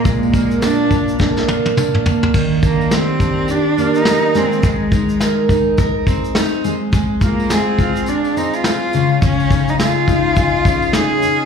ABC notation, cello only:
X:1
M:4/4
L:1/16
Q:"Swing 16ths" 1/4=105
K:Eb
V:1 name="Cello"
A,4 D4 z8 | z2 B,2 C4 D3 E3 C2 | A,6 z8 z2 | z2 B,2 C4 D2 E F4- F |
_D3 E F8 A4 |]